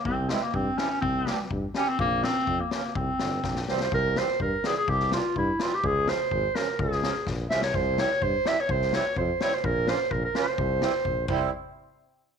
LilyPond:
<<
  \new Staff \with { instrumentName = "Clarinet" } { \time 2/4 \tempo 4 = 126 c'8 aes16 bes16 c'8 des'16 des'16 | c'4 r8 des'16 c'16 | bes8 c'8. bes16 bes8 | c'4. c''16 c''16 |
bes'8 c''8 bes'8 aes'16 aes'16 | g'8 f'8 e'8 f'16 g'16 | aes'8 c''4 bes'8 | aes'4 r8 e''16 des''16 |
c''8 des''8 c''8 e''16 des''16 | c''8 des''8 c''8 des''16 c''16 | bes'8 c''8 bes'16 bes'16 c''8~ | c''4. c''8 |
r2 | }
  \new Staff \with { instrumentName = "Accordion" } { \time 2/4 r8 <g c' e'>16 r8. <g c' e'>16 r16 | r8 <g c' g'>16 r8. <g c' g'>16 r16 | r8 <f bes des'>16 r8. <f bes des'>16 r16 | r8 <e g c'>16 r8. <e g c'>16 r16 |
r8 <e g c'>16 r8. <e g c'>16 r16 | r8 <e g bes>16 r8. <e g c'>16 r16 | r8 <f aes des'>16 r8. <f aes des'>16 r16 | r8 <f aes des'>16 r8. <f aes des'>16 r16 |
r8 <g c' e'>16 r8. <g c' e'>16 r16 | r8 <g c' e'>16 r8. <g c' e'>16 r16 | r8 <bes des' f'>16 r8. <bes des' f'>16 r16 | r8 <g c' e'>16 r8. <g c' e'>8 |
r2 | }
  \new Staff \with { instrumentName = "Tuba" } { \clef bass \time 2/4 c,4 g,8 r8 | c,4 g,8 r8 | bes,,4 f,8 r8 | c,8 g,,8 bes,,8 c,8 |
c,4 g,8 r8 | c,4 g,8 r8 | des,4 aes,,8 r8 | des,4 bes,,8 c,8 |
c,4 g,8 r8 | c,4 f,8 r8 | bes,,4 bes,,8 r8 | c,4 bes,,8 c,8 |
r2 | }
  \new DrumStaff \with { instrumentName = "Drums" } \drummode { \time 2/4 bd8 sn8 bd8 sn8 | bd8 sn8 bd8 sn8 | bd8 sn8 bd8 sn8 | bd8 sn8 <bd sn>16 sn16 sn16 sn16 |
bd8 sn8 bd8 sn8 | bd16 sn16 sn8 bd8 sn8 | bd8 sn8 bd8 sn8 | bd16 sn16 sn8 <bd sn>8 sn16 sn16 |
bd8 sn8 bd8 sn8 | bd16 sn16 sn8 bd8 sn8 | bd8 sn8 bd8 sn8 | bd8 sn8 bd8 <cymc bd>8 |
r4 r4 | }
>>